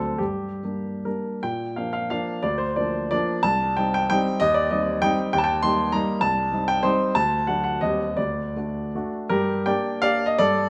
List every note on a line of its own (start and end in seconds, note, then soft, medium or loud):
0.00 0.19 D2 medium
0.00 0.16 F#3 soft
0.00 0.17 C4 soft
0.00 0.17 D4 soft
0.00 0.20 A4 medium
0.18 0.62 G2 soft
0.18 1.05 G4 medium
0.63 1.02 G3 soft
0.63 1.02 A#3 soft
0.63 1.02 D4 soft
1.05 1.40 G3 soft
1.05 1.40 A#3 soft
1.05 1.40 D4 soft
1.05 1.43 A#4 medium
1.43 1.76 A#2 medium
1.43 1.77 G5 medium
1.76 2.08 F3 soft
1.76 2.08 A#3 soft
1.76 2.08 D4 soft
1.76 1.91 F5 medium
1.93 2.09 F5 medium
2.10 2.40 F3 medium
2.10 2.40 A#3 medium
2.10 2.40 D4 medium
2.10 2.43 F5 medium
2.43 2.76 D2 medium
2.43 2.59 D5 medium
2.58 2.76 C5 medium
2.76 3.08 F3 soft
2.76 3.08 A#3 soft
2.76 3.09 D4 soft
2.76 3.09 D5 medium
3.11 3.41 F3 medium
3.11 3.41 A#3 medium
3.11 3.41 D4 medium
3.11 3.44 D5 medium
3.43 3.76 C2 medium
3.43 3.77 A5 loud
3.77 4.07 G3 soft
3.77 4.07 C4 soft
3.77 4.07 D#4 medium
3.77 3.93 G5 medium
3.94 4.08 G5 loud
4.10 4.37 G3 medium
4.10 4.37 C4 medium
4.10 4.38 D#4 medium
4.10 4.40 G5 loud
4.40 4.70 D#2 medium
4.40 4.55 D#5 loud
4.54 4.71 D5 medium
4.71 5.00 G3 soft
4.71 5.00 C4 medium
4.71 5.00 D#4 medium
4.71 5.02 D#5 medium
5.02 5.30 G3 medium
5.02 5.31 C4 medium
5.02 5.31 D#4 medium
5.02 5.18 G5 loud
5.33 5.63 D#2 medium
5.33 5.39 G5 loud
5.38 5.45 A5 medium
5.44 5.63 G5 loud
5.63 5.90 G3 soft
5.63 5.90 A#3 soft
5.63 5.90 D#4 medium
5.63 5.93 C6 loud
5.92 6.19 G3 medium
5.92 6.19 A#3 medium
5.92 6.20 D#4 medium
5.92 6.22 A#5 medium
6.21 6.52 C2 medium
6.21 6.69 A5 loud
6.52 6.81 G3 soft
6.52 6.81 C4 soft
6.52 6.82 D#4 medium
6.68 6.84 G5 medium
6.83 7.12 G3 medium
6.83 7.12 C4 medium
6.83 7.12 D#4 medium
6.83 7.14 C5 medium
7.15 7.47 D2 medium
7.15 7.47 A5 loud
7.47 7.78 F#3 soft
7.47 7.78 A3 soft
7.47 7.79 D4 soft
7.47 7.62 F#5 medium
7.64 7.81 F#5 medium
7.81 8.16 D#2 medium
7.81 8.14 G3 soft
7.81 8.15 C4 soft
7.81 8.15 G4 soft
7.81 8.17 D#5 medium
8.17 8.55 D2 medium
8.17 9.13 D5 medium
8.56 8.90 A3 soft
8.56 8.91 D4 soft
8.56 8.91 F#4 soft
8.95 9.28 A3 soft
8.95 9.28 D4 soft
8.95 9.28 F#4 medium
9.29 9.65 G2 medium
9.29 9.64 G4 medium
9.29 9.66 A#4 medium
9.66 9.99 A#3 medium
9.66 9.99 D4 medium
9.66 10.00 G4 medium
9.66 10.01 D5 medium
9.66 10.03 G5 medium
10.02 10.34 A#3 medium
10.02 10.35 D4 medium
10.02 10.35 G4 medium
10.02 10.25 D5 medium
10.02 10.26 F5 loud
10.26 10.38 D#5 medium
10.39 10.69 G2 medium
10.39 10.69 A4 medium
10.39 10.69 D5 loud